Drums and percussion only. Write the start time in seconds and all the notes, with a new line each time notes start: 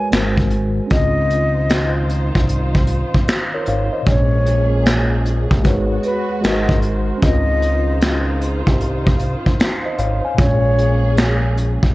0.12 finger snap, snare, closed hi-hat
0.37 kick
0.50 closed hi-hat
0.90 kick, closed hi-hat
1.30 closed hi-hat
1.70 finger snap, snare, closed hi-hat
2.09 closed hi-hat
2.35 kick
2.49 closed hi-hat
2.75 kick
2.87 closed hi-hat
3.14 kick
3.28 finger snap, snare, closed hi-hat
3.66 closed hi-hat
4.06 kick, closed hi-hat
4.46 closed hi-hat
4.86 finger snap, snare, closed hi-hat
5.26 closed hi-hat
5.51 kick
5.64 kick, closed hi-hat
6.03 closed hi-hat
6.44 finger snap, snare, closed hi-hat
6.69 kick
6.82 closed hi-hat
7.22 kick, closed hi-hat
7.62 closed hi-hat
8.01 finger snap, snare, closed hi-hat
8.41 closed hi-hat
8.67 kick
8.81 closed hi-hat
9.07 kick
9.19 closed hi-hat
9.46 kick
9.60 finger snap, snare, closed hi-hat
9.98 closed hi-hat
10.38 kick, closed hi-hat
10.78 closed hi-hat
11.17 finger snap, snare, closed hi-hat
11.57 closed hi-hat
11.83 kick